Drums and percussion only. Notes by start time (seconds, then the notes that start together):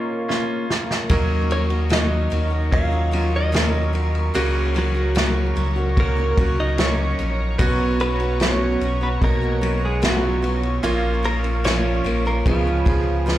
0.30 snare
0.70 snare
0.91 snare
1.09 kick, ride
1.51 ride
1.70 ride
1.90 snare, ride
2.32 ride
2.72 kick, ride
3.13 ride
3.54 snare, ride
3.95 ride
4.15 ride
4.35 ride
4.76 ride
5.16 snare, ride
5.57 ride
5.97 kick, ride
6.38 kick, ride
6.78 snare, ride
7.19 ride
7.59 kick, ride
8.00 ride
8.20 ride
8.40 snare, ride
8.81 ride
9.22 kick, ride
9.63 ride
10.03 snare, ride
10.44 ride
10.63 ride
10.84 ride
11.24 ride
11.44 ride
11.64 snare, ride
12.06 ride
12.46 kick, ride
12.86 kick, ride
13.28 snare